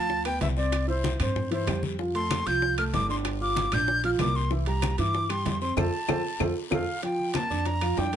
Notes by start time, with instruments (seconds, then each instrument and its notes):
Already playing: upright bass D2, grand piano F3 F4 F5, flute A5
0.09 high bongo, high conga, long guiro
0.25 grand piano B3 B4 B5, flute G5, high bongo, high conga, high timbale, claves
0.41 upright bass C2, flute E5, high bongo, low bongo, high conga, high timbale, low timbale, short guiro
0.57 grand piano C4 C5 C6, flute D5, high bongo, short guiro
0.72 high bongo, high conga, high timbale, long guiro, claves
0.88 grand piano E4 E5 E6, flute C5, high conga
1.04 high bongo, high conga, high timbale, low timbale, short guiro
1.20 upright bass G2, grand piano C4 C5 C6, flute C5, high bongo, high conga, low conga, high timbale, short guiro, claves
1.36 high bongo, high conga, low conga, long guiro
1.51 grand piano E3 E4 E5, flute C5, high bongo, high conga, high timbale
1.67 upright bass F2, grand piano G3 G4 G5, high bongo, low bongo, high conga, high timbale, low timbale, short guiro, claves
1.83 high bongo, high conga, short guiro
1.99 grand piano F3 F4 F5, high bongo, high conga, long guiro
2.15 grand piano A3 A4 A5, flute C6, high conga, high timbale
2.30 high bongo, high conga, high timbale, low timbale, short guiro, claves
2.46 upright bass C2, grand piano F3 F4 F5, flute G6, high bongo, high conga, high timbale, short guiro
2.62 high bongo, high conga, long guiro
2.78 grand piano A3 A4 A5, flute F6, high bongo, high conga, high timbale, claves
2.94 upright bass G1, flute D6, high bongo, low bongo, high conga, high timbale, low timbale, short guiro
3.09 grand piano D4 D5 D6, flute C6, high bongo, short guiro
3.25 high bongo, high conga, high timbale, long guiro, claves
3.41 grand piano F4 F5 F6, flute D6, high conga
3.56 high bongo, high conga, high timbale, low timbale, short guiro
3.72 upright bass A#1, grand piano D4 D5 D6, flute G6, high bongo, high conga, low conga, high timbale, short guiro, claves
3.88 high bongo, high conga, long guiro
4.04 grand piano F3 F4 F5, flute F6, high bongo, high conga, high timbale
4.19 upright bass C2, grand piano A#3 A#4 A#5, flute D6, high bongo, low bongo, high conga, high timbale, low timbale, short guiro, claves
4.35 flute C6, high bongo, short guiro
4.51 grand piano E3 E4 E5, high bongo, high conga, long guiro
4.66 grand piano G3 G4 G5, flute A#5, high conga, high timbale
4.82 high bongo, high conga, high timbale, low timbale, short guiro, claves
4.98 upright bass G2, grand piano E3 E4 E5, flute D6, high bongo, high conga, high timbale, short guiro
5.14 high bongo, high conga, long guiro
5.29 grand piano G3 G4 G5, flute C6, high bongo, high conga, high timbale, claves
5.46 upright bass F2, high bongo, low bongo, high conga, high timbale, low timbale, short guiro
5.61 grand piano C4 C5 C6, flute C6, high bongo, short guiro
5.77 upright bass F2, grand piano F4 A4 C5, flute A5, high bongo, high conga, high timbale, long guiro, claves
6.08 upright bass F2, grand piano F4 A4 C5, high bongo, high conga, high timbale, long guiro, claves
6.40 upright bass F2, grand piano F4 A4 C5, high bongo, high conga, high timbale, long guiro, claves
6.71 upright bass F2, grand piano F4 A4 C5, flute F5, high bongo, high conga, high timbale, long guiro, claves
7.03 grand piano F3 F4 F5, flute G5, high bongo, high conga, high timbale, long guiro
7.19 high conga
7.34 grand piano A#3 A#4 A#5, flute A5, high bongo, high conga, high timbale, low timbale, short guiro, claves
7.50 upright bass F2, grand piano D4 D5 D6, high conga, short guiro
7.65 flute A#5, high bongo, high conga, high timbale, long guiro
7.81 grand piano F3 F4 F5, high conga, high timbale, claves
7.97 upright bass F2, grand piano D4 D5 D6, flute G5, high bongo, low bongo, high conga, low timbale, short guiro
8.13 high timbale, short guiro